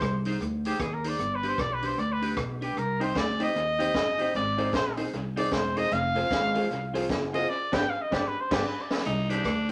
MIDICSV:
0, 0, Header, 1, 8, 480
1, 0, Start_track
1, 0, Key_signature, -3, "minor"
1, 0, Tempo, 393185
1, 1458, Time_signature, 4, 2, 24, 8
1, 11865, End_track
2, 0, Start_track
2, 0, Title_t, "Trumpet"
2, 0, Program_c, 0, 56
2, 0, Note_on_c, 0, 72, 101
2, 265, Note_off_c, 0, 72, 0
2, 814, Note_on_c, 0, 67, 100
2, 992, Note_on_c, 0, 68, 87
2, 1010, Note_off_c, 0, 67, 0
2, 1144, Note_on_c, 0, 70, 83
2, 1162, Note_off_c, 0, 68, 0
2, 1326, Note_on_c, 0, 74, 97
2, 1344, Note_off_c, 0, 70, 0
2, 1654, Note_on_c, 0, 71, 89
2, 1672, Note_off_c, 0, 74, 0
2, 1809, Note_on_c, 0, 72, 97
2, 1827, Note_off_c, 0, 71, 0
2, 1963, Note_on_c, 0, 74, 104
2, 1981, Note_off_c, 0, 72, 0
2, 2117, Note_on_c, 0, 71, 98
2, 2136, Note_off_c, 0, 74, 0
2, 2273, Note_on_c, 0, 72, 90
2, 2292, Note_off_c, 0, 71, 0
2, 2432, Note_on_c, 0, 74, 100
2, 2450, Note_off_c, 0, 72, 0
2, 2594, Note_on_c, 0, 71, 88
2, 2613, Note_off_c, 0, 74, 0
2, 2845, Note_off_c, 0, 71, 0
2, 3225, Note_on_c, 0, 67, 98
2, 3398, Note_on_c, 0, 70, 93
2, 3417, Note_off_c, 0, 67, 0
2, 3703, Note_on_c, 0, 72, 106
2, 3721, Note_off_c, 0, 70, 0
2, 3880, Note_on_c, 0, 74, 119
2, 3899, Note_off_c, 0, 72, 0
2, 4193, Note_on_c, 0, 75, 117
2, 4212, Note_off_c, 0, 74, 0
2, 5317, Note_off_c, 0, 75, 0
2, 5323, Note_on_c, 0, 74, 115
2, 5757, Note_off_c, 0, 74, 0
2, 5798, Note_on_c, 0, 72, 99
2, 6064, Note_off_c, 0, 72, 0
2, 6571, Note_on_c, 0, 74, 105
2, 6757, Note_on_c, 0, 72, 101
2, 6775, Note_off_c, 0, 74, 0
2, 7054, Note_on_c, 0, 75, 110
2, 7072, Note_off_c, 0, 72, 0
2, 7239, Note_on_c, 0, 77, 114
2, 7257, Note_off_c, 0, 75, 0
2, 8485, Note_off_c, 0, 77, 0
2, 8967, Note_on_c, 0, 75, 112
2, 9149, Note_on_c, 0, 74, 107
2, 9168, Note_off_c, 0, 75, 0
2, 9454, Note_on_c, 0, 79, 114
2, 9472, Note_off_c, 0, 74, 0
2, 9642, Note_on_c, 0, 77, 102
2, 9661, Note_off_c, 0, 79, 0
2, 9787, Note_on_c, 0, 75, 94
2, 9806, Note_off_c, 0, 77, 0
2, 9936, Note_on_c, 0, 74, 95
2, 9954, Note_off_c, 0, 75, 0
2, 10107, Note_on_c, 0, 71, 101
2, 10125, Note_off_c, 0, 74, 0
2, 10264, Note_on_c, 0, 72, 96
2, 10283, Note_off_c, 0, 71, 0
2, 10431, Note_on_c, 0, 74, 100
2, 10450, Note_off_c, 0, 72, 0
2, 10585, Note_off_c, 0, 74, 0
2, 10593, Note_on_c, 0, 71, 84
2, 10762, Note_on_c, 0, 74, 75
2, 10781, Note_off_c, 0, 71, 0
2, 11070, Note_off_c, 0, 74, 0
2, 11865, End_track
3, 0, Start_track
3, 0, Title_t, "Clean electric guitar"
3, 0, Program_c, 1, 27
3, 317, Note_on_c, 1, 63, 101
3, 328, Note_on_c, 1, 68, 87
3, 331, Note_on_c, 1, 72, 113
3, 463, Note_off_c, 1, 63, 0
3, 468, Note_off_c, 1, 68, 0
3, 470, Note_off_c, 1, 72, 0
3, 805, Note_on_c, 1, 63, 84
3, 811, Note_on_c, 1, 68, 100
3, 818, Note_on_c, 1, 72, 90
3, 946, Note_off_c, 1, 63, 0
3, 950, Note_off_c, 1, 68, 0
3, 953, Note_off_c, 1, 72, 0
3, 1277, Note_on_c, 1, 63, 84
3, 1285, Note_on_c, 1, 68, 89
3, 1293, Note_on_c, 1, 72, 94
3, 1422, Note_off_c, 1, 63, 0
3, 1426, Note_off_c, 1, 68, 0
3, 1430, Note_off_c, 1, 72, 0
3, 1747, Note_on_c, 1, 62, 82
3, 1755, Note_on_c, 1, 67, 100
3, 1764, Note_on_c, 1, 71, 99
3, 1897, Note_off_c, 1, 62, 0
3, 1901, Note_off_c, 1, 67, 0
3, 1906, Note_off_c, 1, 71, 0
3, 2230, Note_on_c, 1, 62, 89
3, 2237, Note_on_c, 1, 67, 87
3, 2245, Note_on_c, 1, 71, 101
3, 2378, Note_off_c, 1, 62, 0
3, 2382, Note_off_c, 1, 67, 0
3, 2386, Note_off_c, 1, 71, 0
3, 2708, Note_on_c, 1, 62, 84
3, 2717, Note_on_c, 1, 67, 89
3, 2720, Note_on_c, 1, 71, 95
3, 2857, Note_off_c, 1, 62, 0
3, 2862, Note_off_c, 1, 67, 0
3, 2864, Note_off_c, 1, 71, 0
3, 3192, Note_on_c, 1, 62, 80
3, 3201, Note_on_c, 1, 67, 78
3, 3205, Note_on_c, 1, 71, 97
3, 3339, Note_off_c, 1, 62, 0
3, 3344, Note_off_c, 1, 67, 0
3, 3346, Note_off_c, 1, 71, 0
3, 3666, Note_on_c, 1, 63, 100
3, 3669, Note_on_c, 1, 67, 99
3, 3675, Note_on_c, 1, 72, 108
3, 3816, Note_off_c, 1, 63, 0
3, 3818, Note_off_c, 1, 67, 0
3, 3821, Note_off_c, 1, 72, 0
3, 4149, Note_on_c, 1, 63, 83
3, 4157, Note_on_c, 1, 67, 94
3, 4163, Note_on_c, 1, 72, 106
3, 4298, Note_off_c, 1, 63, 0
3, 4302, Note_off_c, 1, 67, 0
3, 4305, Note_off_c, 1, 72, 0
3, 4622, Note_on_c, 1, 63, 89
3, 4630, Note_on_c, 1, 67, 99
3, 4638, Note_on_c, 1, 72, 93
3, 4775, Note_off_c, 1, 63, 0
3, 4779, Note_off_c, 1, 67, 0
3, 4783, Note_off_c, 1, 72, 0
3, 5110, Note_on_c, 1, 63, 84
3, 5121, Note_on_c, 1, 67, 83
3, 5127, Note_on_c, 1, 72, 95
3, 5258, Note_off_c, 1, 63, 0
3, 5264, Note_off_c, 1, 67, 0
3, 5267, Note_off_c, 1, 72, 0
3, 5595, Note_on_c, 1, 63, 98
3, 5597, Note_on_c, 1, 68, 116
3, 5606, Note_on_c, 1, 72, 106
3, 5741, Note_off_c, 1, 63, 0
3, 5742, Note_off_c, 1, 68, 0
3, 5747, Note_off_c, 1, 72, 0
3, 6072, Note_on_c, 1, 63, 79
3, 6075, Note_on_c, 1, 68, 91
3, 6079, Note_on_c, 1, 72, 91
3, 6220, Note_off_c, 1, 63, 0
3, 6221, Note_off_c, 1, 68, 0
3, 6223, Note_off_c, 1, 72, 0
3, 6547, Note_on_c, 1, 63, 87
3, 6557, Note_on_c, 1, 72, 93
3, 6558, Note_on_c, 1, 68, 92
3, 6697, Note_off_c, 1, 63, 0
3, 6702, Note_off_c, 1, 72, 0
3, 6703, Note_off_c, 1, 68, 0
3, 7035, Note_on_c, 1, 63, 81
3, 7040, Note_on_c, 1, 68, 92
3, 7046, Note_on_c, 1, 72, 86
3, 7181, Note_off_c, 1, 63, 0
3, 7184, Note_off_c, 1, 68, 0
3, 7187, Note_off_c, 1, 72, 0
3, 7512, Note_on_c, 1, 65, 91
3, 7521, Note_on_c, 1, 68, 88
3, 7522, Note_on_c, 1, 72, 100
3, 7660, Note_off_c, 1, 65, 0
3, 7664, Note_off_c, 1, 68, 0
3, 7665, Note_off_c, 1, 72, 0
3, 7987, Note_on_c, 1, 65, 86
3, 7994, Note_on_c, 1, 68, 98
3, 8004, Note_on_c, 1, 72, 90
3, 8137, Note_off_c, 1, 65, 0
3, 8141, Note_off_c, 1, 68, 0
3, 8146, Note_off_c, 1, 72, 0
3, 8471, Note_on_c, 1, 65, 105
3, 8479, Note_on_c, 1, 68, 93
3, 8489, Note_on_c, 1, 72, 98
3, 8619, Note_off_c, 1, 65, 0
3, 8623, Note_off_c, 1, 68, 0
3, 8628, Note_off_c, 1, 72, 0
3, 8954, Note_on_c, 1, 65, 97
3, 8960, Note_on_c, 1, 68, 87
3, 8968, Note_on_c, 1, 72, 104
3, 9101, Note_off_c, 1, 65, 0
3, 9104, Note_off_c, 1, 68, 0
3, 9108, Note_off_c, 1, 72, 0
3, 9426, Note_on_c, 1, 62, 115
3, 9435, Note_on_c, 1, 67, 113
3, 9441, Note_on_c, 1, 71, 118
3, 9554, Note_off_c, 1, 62, 0
3, 9560, Note_off_c, 1, 67, 0
3, 9563, Note_off_c, 1, 71, 0
3, 9915, Note_on_c, 1, 62, 97
3, 9926, Note_on_c, 1, 67, 114
3, 9931, Note_on_c, 1, 71, 106
3, 10039, Note_off_c, 1, 62, 0
3, 10046, Note_off_c, 1, 67, 0
3, 10049, Note_off_c, 1, 71, 0
3, 10386, Note_on_c, 1, 62, 108
3, 10400, Note_on_c, 1, 67, 110
3, 10409, Note_on_c, 1, 71, 105
3, 10515, Note_off_c, 1, 62, 0
3, 10522, Note_off_c, 1, 67, 0
3, 10527, Note_off_c, 1, 71, 0
3, 11349, Note_on_c, 1, 63, 80
3, 11354, Note_on_c, 1, 67, 108
3, 11361, Note_on_c, 1, 72, 93
3, 11499, Note_off_c, 1, 63, 0
3, 11501, Note_off_c, 1, 67, 0
3, 11505, Note_off_c, 1, 72, 0
3, 11826, Note_on_c, 1, 63, 71
3, 11865, Note_off_c, 1, 63, 0
3, 11865, End_track
4, 0, Start_track
4, 0, Title_t, "Upright piano"
4, 0, Program_c, 2, 0
4, 3659, Note_on_c, 2, 60, 89
4, 3661, Note_on_c, 2, 63, 84
4, 3664, Note_on_c, 2, 67, 79
4, 3668, Note_on_c, 2, 72, 95
4, 3777, Note_off_c, 2, 60, 0
4, 3778, Note_off_c, 2, 63, 0
4, 3780, Note_off_c, 2, 67, 0
4, 3782, Note_off_c, 2, 72, 0
4, 4142, Note_on_c, 2, 60, 100
4, 4145, Note_on_c, 2, 63, 83
4, 4149, Note_on_c, 2, 67, 85
4, 4155, Note_on_c, 2, 72, 102
4, 4259, Note_off_c, 2, 60, 0
4, 4261, Note_off_c, 2, 63, 0
4, 4262, Note_off_c, 2, 67, 0
4, 4265, Note_off_c, 2, 72, 0
4, 4336, Note_on_c, 2, 72, 27
4, 4339, Note_on_c, 2, 67, 27
4, 4396, Note_off_c, 2, 72, 0
4, 4397, Note_off_c, 2, 67, 0
4, 4626, Note_on_c, 2, 60, 95
4, 4626, Note_on_c, 2, 63, 83
4, 4634, Note_on_c, 2, 67, 86
4, 4639, Note_on_c, 2, 72, 100
4, 4741, Note_off_c, 2, 60, 0
4, 4741, Note_off_c, 2, 63, 0
4, 4745, Note_off_c, 2, 67, 0
4, 4747, Note_off_c, 2, 72, 0
4, 4821, Note_on_c, 2, 67, 23
4, 4821, Note_on_c, 2, 72, 28
4, 4879, Note_off_c, 2, 67, 0
4, 4879, Note_off_c, 2, 72, 0
4, 5114, Note_on_c, 2, 60, 92
4, 5123, Note_on_c, 2, 63, 80
4, 5126, Note_on_c, 2, 67, 86
4, 5132, Note_on_c, 2, 72, 97
4, 5225, Note_off_c, 2, 60, 0
4, 5230, Note_off_c, 2, 63, 0
4, 5231, Note_off_c, 2, 67, 0
4, 5234, Note_off_c, 2, 72, 0
4, 5582, Note_on_c, 2, 60, 93
4, 5585, Note_on_c, 2, 63, 88
4, 5590, Note_on_c, 2, 68, 85
4, 5597, Note_on_c, 2, 72, 111
4, 5699, Note_off_c, 2, 60, 0
4, 5701, Note_off_c, 2, 63, 0
4, 5703, Note_off_c, 2, 68, 0
4, 5707, Note_off_c, 2, 72, 0
4, 6061, Note_on_c, 2, 60, 90
4, 6065, Note_on_c, 2, 63, 90
4, 6070, Note_on_c, 2, 68, 82
4, 6075, Note_on_c, 2, 72, 105
4, 6178, Note_off_c, 2, 60, 0
4, 6180, Note_off_c, 2, 63, 0
4, 6183, Note_off_c, 2, 68, 0
4, 6186, Note_off_c, 2, 72, 0
4, 6260, Note_on_c, 2, 72, 29
4, 6264, Note_on_c, 2, 68, 26
4, 6318, Note_off_c, 2, 72, 0
4, 6320, Note_off_c, 2, 68, 0
4, 6550, Note_on_c, 2, 60, 99
4, 6557, Note_on_c, 2, 68, 83
4, 6558, Note_on_c, 2, 63, 92
4, 6567, Note_on_c, 2, 72, 104
4, 6663, Note_off_c, 2, 60, 0
4, 6667, Note_off_c, 2, 63, 0
4, 6667, Note_off_c, 2, 68, 0
4, 6672, Note_off_c, 2, 72, 0
4, 6746, Note_on_c, 2, 68, 25
4, 6746, Note_on_c, 2, 72, 27
4, 6801, Note_off_c, 2, 68, 0
4, 6801, Note_off_c, 2, 72, 0
4, 7027, Note_on_c, 2, 60, 87
4, 7036, Note_on_c, 2, 63, 90
4, 7040, Note_on_c, 2, 68, 81
4, 7048, Note_on_c, 2, 72, 101
4, 7142, Note_off_c, 2, 60, 0
4, 7146, Note_off_c, 2, 63, 0
4, 7149, Note_off_c, 2, 68, 0
4, 7152, Note_off_c, 2, 72, 0
4, 7506, Note_on_c, 2, 60, 92
4, 7512, Note_on_c, 2, 65, 92
4, 7517, Note_on_c, 2, 68, 85
4, 7521, Note_on_c, 2, 72, 112
4, 7621, Note_off_c, 2, 60, 0
4, 7624, Note_off_c, 2, 65, 0
4, 7627, Note_off_c, 2, 68, 0
4, 7629, Note_off_c, 2, 72, 0
4, 7992, Note_on_c, 2, 60, 98
4, 7994, Note_on_c, 2, 65, 86
4, 8001, Note_on_c, 2, 68, 85
4, 8006, Note_on_c, 2, 72, 99
4, 8104, Note_off_c, 2, 60, 0
4, 8105, Note_off_c, 2, 65, 0
4, 8109, Note_off_c, 2, 68, 0
4, 8111, Note_off_c, 2, 72, 0
4, 8182, Note_on_c, 2, 68, 27
4, 8186, Note_on_c, 2, 72, 31
4, 8239, Note_off_c, 2, 68, 0
4, 8241, Note_off_c, 2, 72, 0
4, 8464, Note_on_c, 2, 60, 97
4, 8470, Note_on_c, 2, 65, 80
4, 8476, Note_on_c, 2, 68, 86
4, 8479, Note_on_c, 2, 72, 107
4, 8580, Note_off_c, 2, 60, 0
4, 8583, Note_off_c, 2, 65, 0
4, 8586, Note_off_c, 2, 68, 0
4, 8588, Note_off_c, 2, 72, 0
4, 8946, Note_on_c, 2, 60, 95
4, 8956, Note_on_c, 2, 65, 84
4, 8958, Note_on_c, 2, 68, 89
4, 8959, Note_on_c, 2, 72, 104
4, 9061, Note_off_c, 2, 60, 0
4, 9066, Note_off_c, 2, 65, 0
4, 9067, Note_off_c, 2, 68, 0
4, 9068, Note_off_c, 2, 72, 0
4, 9422, Note_on_c, 2, 59, 95
4, 9424, Note_on_c, 2, 62, 108
4, 9431, Note_on_c, 2, 67, 102
4, 9436, Note_on_c, 2, 71, 104
4, 9552, Note_off_c, 2, 59, 0
4, 9553, Note_off_c, 2, 62, 0
4, 9557, Note_off_c, 2, 67, 0
4, 9560, Note_off_c, 2, 71, 0
4, 9899, Note_on_c, 2, 59, 103
4, 9904, Note_on_c, 2, 62, 107
4, 9908, Note_on_c, 2, 67, 108
4, 9916, Note_on_c, 2, 71, 98
4, 10030, Note_off_c, 2, 59, 0
4, 10033, Note_off_c, 2, 62, 0
4, 10035, Note_off_c, 2, 67, 0
4, 10040, Note_off_c, 2, 71, 0
4, 10386, Note_on_c, 2, 59, 109
4, 10392, Note_on_c, 2, 62, 107
4, 10396, Note_on_c, 2, 67, 109
4, 10400, Note_on_c, 2, 71, 107
4, 10514, Note_off_c, 2, 59, 0
4, 10518, Note_off_c, 2, 62, 0
4, 10520, Note_off_c, 2, 67, 0
4, 10522, Note_off_c, 2, 71, 0
4, 11865, End_track
5, 0, Start_track
5, 0, Title_t, "Tenor saxophone"
5, 0, Program_c, 3, 66
5, 11061, Note_on_c, 3, 63, 113
5, 11356, Note_on_c, 3, 62, 107
5, 11374, Note_off_c, 3, 63, 0
5, 11857, Note_off_c, 3, 62, 0
5, 11865, End_track
6, 0, Start_track
6, 0, Title_t, "Upright bass"
6, 0, Program_c, 4, 32
6, 20, Note_on_c, 4, 36, 102
6, 427, Note_off_c, 4, 36, 0
6, 493, Note_on_c, 4, 38, 92
6, 903, Note_off_c, 4, 38, 0
6, 974, Note_on_c, 4, 39, 104
6, 1383, Note_off_c, 4, 39, 0
6, 1451, Note_on_c, 4, 31, 101
6, 1862, Note_off_c, 4, 31, 0
6, 1934, Note_on_c, 4, 35, 94
6, 2343, Note_off_c, 4, 35, 0
6, 2416, Note_on_c, 4, 38, 95
6, 2824, Note_off_c, 4, 38, 0
6, 2895, Note_on_c, 4, 35, 98
6, 3304, Note_off_c, 4, 35, 0
6, 3378, Note_on_c, 4, 36, 101
6, 3786, Note_off_c, 4, 36, 0
6, 3850, Note_on_c, 4, 38, 96
6, 4261, Note_off_c, 4, 38, 0
6, 4330, Note_on_c, 4, 39, 94
6, 4741, Note_off_c, 4, 39, 0
6, 4819, Note_on_c, 4, 31, 93
6, 5226, Note_off_c, 4, 31, 0
6, 5306, Note_on_c, 4, 32, 104
6, 5710, Note_off_c, 4, 32, 0
6, 5779, Note_on_c, 4, 34, 103
6, 6187, Note_off_c, 4, 34, 0
6, 6266, Note_on_c, 4, 36, 89
6, 6670, Note_off_c, 4, 36, 0
6, 6738, Note_on_c, 4, 28, 94
6, 7146, Note_off_c, 4, 28, 0
6, 7221, Note_on_c, 4, 29, 107
6, 7628, Note_off_c, 4, 29, 0
6, 7701, Note_on_c, 4, 32, 112
6, 8108, Note_off_c, 4, 32, 0
6, 8186, Note_on_c, 4, 36, 95
6, 8591, Note_off_c, 4, 36, 0
6, 8663, Note_on_c, 4, 30, 105
6, 9069, Note_off_c, 4, 30, 0
6, 9439, Note_on_c, 4, 31, 100
6, 9561, Note_off_c, 4, 31, 0
6, 9915, Note_on_c, 4, 31, 107
6, 10040, Note_off_c, 4, 31, 0
6, 10398, Note_on_c, 4, 31, 107
6, 10521, Note_off_c, 4, 31, 0
6, 11058, Note_on_c, 4, 36, 111
6, 11466, Note_off_c, 4, 36, 0
6, 11530, Note_on_c, 4, 38, 96
6, 11865, Note_off_c, 4, 38, 0
6, 11865, End_track
7, 0, Start_track
7, 0, Title_t, "Muted clean electric guitar strokes"
7, 978, Note_on_c, 9, 29, 38
7, 1100, Note_off_c, 9, 29, 0
7, 2892, Note_on_c, 9, 29, 36
7, 3014, Note_off_c, 9, 29, 0
7, 4821, Note_on_c, 9, 29, 38
7, 4943, Note_off_c, 9, 29, 0
7, 6737, Note_on_c, 9, 29, 39
7, 6859, Note_off_c, 9, 29, 0
7, 11865, End_track
8, 0, Start_track
8, 0, Title_t, "Drums"
8, 12, Note_on_c, 9, 36, 107
8, 14, Note_on_c, 9, 44, 70
8, 21, Note_on_c, 9, 37, 114
8, 134, Note_off_c, 9, 36, 0
8, 136, Note_off_c, 9, 44, 0
8, 143, Note_off_c, 9, 37, 0
8, 305, Note_on_c, 9, 46, 100
8, 428, Note_off_c, 9, 46, 0
8, 496, Note_on_c, 9, 44, 67
8, 618, Note_off_c, 9, 44, 0
8, 793, Note_on_c, 9, 46, 115
8, 915, Note_off_c, 9, 46, 0
8, 971, Note_on_c, 9, 36, 115
8, 972, Note_on_c, 9, 37, 120
8, 974, Note_on_c, 9, 44, 74
8, 1093, Note_off_c, 9, 36, 0
8, 1095, Note_off_c, 9, 37, 0
8, 1096, Note_off_c, 9, 44, 0
8, 1272, Note_on_c, 9, 46, 94
8, 1394, Note_off_c, 9, 46, 0
8, 1455, Note_on_c, 9, 44, 70
8, 1577, Note_off_c, 9, 44, 0
8, 1747, Note_on_c, 9, 46, 78
8, 1869, Note_off_c, 9, 46, 0
8, 1931, Note_on_c, 9, 36, 113
8, 1936, Note_on_c, 9, 44, 63
8, 1943, Note_on_c, 9, 37, 124
8, 2053, Note_off_c, 9, 36, 0
8, 2058, Note_off_c, 9, 44, 0
8, 2065, Note_off_c, 9, 37, 0
8, 2228, Note_on_c, 9, 46, 96
8, 2350, Note_off_c, 9, 46, 0
8, 2417, Note_on_c, 9, 44, 63
8, 2539, Note_off_c, 9, 44, 0
8, 2714, Note_on_c, 9, 46, 101
8, 2837, Note_off_c, 9, 46, 0
8, 2891, Note_on_c, 9, 36, 114
8, 2893, Note_on_c, 9, 37, 122
8, 2895, Note_on_c, 9, 44, 70
8, 3013, Note_off_c, 9, 36, 0
8, 3015, Note_off_c, 9, 37, 0
8, 3017, Note_off_c, 9, 44, 0
8, 3197, Note_on_c, 9, 46, 86
8, 3319, Note_off_c, 9, 46, 0
8, 3378, Note_on_c, 9, 44, 64
8, 3500, Note_off_c, 9, 44, 0
8, 3675, Note_on_c, 9, 46, 84
8, 3797, Note_off_c, 9, 46, 0
8, 3850, Note_on_c, 9, 44, 66
8, 3851, Note_on_c, 9, 36, 114
8, 3857, Note_on_c, 9, 38, 127
8, 3972, Note_off_c, 9, 44, 0
8, 3973, Note_off_c, 9, 36, 0
8, 3979, Note_off_c, 9, 38, 0
8, 4148, Note_on_c, 9, 46, 98
8, 4270, Note_off_c, 9, 46, 0
8, 4340, Note_on_c, 9, 44, 66
8, 4462, Note_off_c, 9, 44, 0
8, 4639, Note_on_c, 9, 46, 112
8, 4761, Note_off_c, 9, 46, 0
8, 4815, Note_on_c, 9, 36, 113
8, 4818, Note_on_c, 9, 38, 127
8, 4819, Note_on_c, 9, 44, 77
8, 4937, Note_off_c, 9, 36, 0
8, 4940, Note_off_c, 9, 38, 0
8, 4941, Note_off_c, 9, 44, 0
8, 5115, Note_on_c, 9, 46, 93
8, 5237, Note_off_c, 9, 46, 0
8, 5301, Note_on_c, 9, 44, 67
8, 5423, Note_off_c, 9, 44, 0
8, 5593, Note_on_c, 9, 46, 76
8, 5715, Note_off_c, 9, 46, 0
8, 5774, Note_on_c, 9, 36, 117
8, 5776, Note_on_c, 9, 44, 64
8, 5783, Note_on_c, 9, 38, 127
8, 5896, Note_off_c, 9, 36, 0
8, 5898, Note_off_c, 9, 44, 0
8, 5905, Note_off_c, 9, 38, 0
8, 6070, Note_on_c, 9, 46, 100
8, 6192, Note_off_c, 9, 46, 0
8, 6260, Note_on_c, 9, 44, 63
8, 6382, Note_off_c, 9, 44, 0
8, 6557, Note_on_c, 9, 46, 108
8, 6679, Note_off_c, 9, 46, 0
8, 6735, Note_on_c, 9, 36, 109
8, 6736, Note_on_c, 9, 38, 121
8, 6737, Note_on_c, 9, 44, 71
8, 6857, Note_off_c, 9, 36, 0
8, 6858, Note_off_c, 9, 38, 0
8, 6859, Note_off_c, 9, 44, 0
8, 7039, Note_on_c, 9, 46, 96
8, 7161, Note_off_c, 9, 46, 0
8, 7215, Note_on_c, 9, 44, 71
8, 7337, Note_off_c, 9, 44, 0
8, 7516, Note_on_c, 9, 46, 81
8, 7638, Note_off_c, 9, 46, 0
8, 7698, Note_on_c, 9, 36, 127
8, 7700, Note_on_c, 9, 44, 72
8, 7707, Note_on_c, 9, 38, 118
8, 7820, Note_off_c, 9, 36, 0
8, 7822, Note_off_c, 9, 44, 0
8, 7829, Note_off_c, 9, 38, 0
8, 7998, Note_on_c, 9, 46, 91
8, 8120, Note_off_c, 9, 46, 0
8, 8188, Note_on_c, 9, 44, 63
8, 8310, Note_off_c, 9, 44, 0
8, 8484, Note_on_c, 9, 46, 114
8, 8607, Note_off_c, 9, 46, 0
8, 8660, Note_on_c, 9, 36, 117
8, 8666, Note_on_c, 9, 38, 127
8, 8667, Note_on_c, 9, 44, 69
8, 8782, Note_off_c, 9, 36, 0
8, 8788, Note_off_c, 9, 38, 0
8, 8789, Note_off_c, 9, 44, 0
8, 8959, Note_on_c, 9, 46, 95
8, 9082, Note_off_c, 9, 46, 0
8, 9434, Note_on_c, 9, 38, 124
8, 9434, Note_on_c, 9, 49, 95
8, 9436, Note_on_c, 9, 36, 114
8, 9557, Note_off_c, 9, 38, 0
8, 9557, Note_off_c, 9, 49, 0
8, 9558, Note_off_c, 9, 36, 0
8, 9914, Note_on_c, 9, 36, 104
8, 9914, Note_on_c, 9, 38, 103
8, 10036, Note_off_c, 9, 36, 0
8, 10036, Note_off_c, 9, 38, 0
8, 10392, Note_on_c, 9, 36, 126
8, 10392, Note_on_c, 9, 38, 122
8, 10392, Note_on_c, 9, 49, 95
8, 10514, Note_off_c, 9, 36, 0
8, 10515, Note_off_c, 9, 38, 0
8, 10515, Note_off_c, 9, 49, 0
8, 10871, Note_on_c, 9, 38, 116
8, 10960, Note_off_c, 9, 38, 0
8, 10960, Note_on_c, 9, 38, 91
8, 11048, Note_on_c, 9, 42, 69
8, 11082, Note_off_c, 9, 38, 0
8, 11170, Note_off_c, 9, 42, 0
8, 11352, Note_on_c, 9, 42, 82
8, 11474, Note_off_c, 9, 42, 0
8, 11528, Note_on_c, 9, 36, 105
8, 11529, Note_on_c, 9, 42, 76
8, 11541, Note_on_c, 9, 37, 117
8, 11650, Note_off_c, 9, 36, 0
8, 11651, Note_off_c, 9, 42, 0
8, 11663, Note_off_c, 9, 37, 0
8, 11828, Note_on_c, 9, 42, 89
8, 11865, Note_off_c, 9, 42, 0
8, 11865, End_track
0, 0, End_of_file